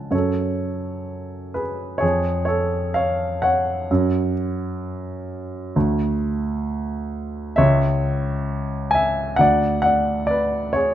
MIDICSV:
0, 0, Header, 1, 2, 480
1, 0, Start_track
1, 0, Key_signature, 3, "minor"
1, 0, Tempo, 944882
1, 68, Time_signature, 4, 2, 24, 8
1, 1507, Tempo, 928793
1, 2947, Tempo, 909091
1, 5687, End_track
2, 0, Start_track
2, 0, Title_t, "Grand piano"
2, 0, Program_c, 0, 0
2, 0, Control_c, 0, 64, 127
2, 0, Note_on_c, 0, 49, 39
2, 0, Note_on_c, 0, 53, 41
2, 0, Note_on_c, 0, 77, 53
2, 0, Note_on_c, 0, 78, 55
2, 0, Note_on_c, 0, 80, 50
2, 0, Note_on_c, 0, 81, 45
2, 54, Note_on_c, 0, 42, 55
2, 59, Note_on_c, 0, 73, 64
2, 74, Note_off_c, 0, 53, 0
2, 74, Note_off_c, 0, 78, 0
2, 74, Control_c, 0, 64, 0
2, 75, Note_off_c, 0, 77, 0
2, 75, Note_on_c, 0, 69, 50
2, 77, Note_off_c, 0, 81, 0
2, 78, Note_off_c, 0, 80, 0
2, 79, Note_off_c, 0, 49, 0
2, 153, Control_c, 0, 64, 127
2, 776, Note_off_c, 0, 69, 0
2, 783, Note_on_c, 0, 71, 61
2, 790, Note_on_c, 0, 68, 48
2, 810, Note_off_c, 0, 73, 0
2, 1004, Note_off_c, 0, 42, 0
2, 1006, Note_on_c, 0, 73, 73
2, 1010, Note_off_c, 0, 68, 0
2, 1018, Note_on_c, 0, 68, 63
2, 1026, Note_on_c, 0, 41, 55
2, 1034, Note_off_c, 0, 71, 0
2, 1039, Control_c, 0, 64, 0
2, 1121, Control_c, 0, 64, 127
2, 1238, Note_off_c, 0, 73, 0
2, 1245, Note_off_c, 0, 68, 0
2, 1245, Note_on_c, 0, 73, 73
2, 1259, Note_on_c, 0, 69, 61
2, 1486, Note_off_c, 0, 69, 0
2, 1495, Note_on_c, 0, 77, 76
2, 1497, Note_off_c, 0, 73, 0
2, 1504, Note_on_c, 0, 73, 61
2, 1731, Note_off_c, 0, 73, 0
2, 1741, Note_on_c, 0, 78, 79
2, 1749, Note_on_c, 0, 73, 62
2, 1750, Note_off_c, 0, 77, 0
2, 1966, Note_off_c, 0, 41, 0
2, 1994, Control_c, 0, 64, 0
2, 1994, Note_on_c, 0, 42, 64
2, 2082, Control_c, 0, 64, 127
2, 2203, Note_off_c, 0, 78, 0
2, 2207, Note_off_c, 0, 73, 0
2, 2929, Note_off_c, 0, 42, 0
2, 2950, Note_on_c, 0, 38, 66
2, 2954, Control_c, 0, 64, 0
2, 3059, Control_c, 0, 64, 127
2, 3896, Note_off_c, 0, 38, 0
2, 3901, Note_on_c, 0, 76, 87
2, 3911, Note_on_c, 0, 37, 70
2, 3911, Note_on_c, 0, 73, 73
2, 3922, Control_c, 0, 64, 0
2, 4024, Control_c, 0, 64, 127
2, 4604, Note_off_c, 0, 76, 0
2, 4609, Note_off_c, 0, 73, 0
2, 4613, Note_on_c, 0, 80, 86
2, 4633, Note_on_c, 0, 76, 73
2, 4848, Note_off_c, 0, 37, 0
2, 4854, Note_on_c, 0, 78, 92
2, 4855, Note_off_c, 0, 76, 0
2, 4866, Note_on_c, 0, 38, 59
2, 4869, Note_off_c, 0, 80, 0
2, 4877, Note_on_c, 0, 74, 74
2, 4879, Control_c, 0, 64, 0
2, 4978, Control_c, 0, 64, 127
2, 5086, Note_off_c, 0, 78, 0
2, 5094, Note_on_c, 0, 78, 88
2, 5097, Note_off_c, 0, 74, 0
2, 5115, Note_on_c, 0, 74, 61
2, 5323, Note_off_c, 0, 74, 0
2, 5324, Note_off_c, 0, 78, 0
2, 5331, Note_on_c, 0, 74, 76
2, 5350, Note_on_c, 0, 71, 56
2, 5572, Note_off_c, 0, 71, 0
2, 5574, Note_on_c, 0, 73, 79
2, 5586, Note_off_c, 0, 74, 0
2, 5590, Note_on_c, 0, 68, 53
2, 5687, Note_off_c, 0, 38, 0
2, 5687, Note_off_c, 0, 68, 0
2, 5687, Note_off_c, 0, 73, 0
2, 5687, End_track
0, 0, End_of_file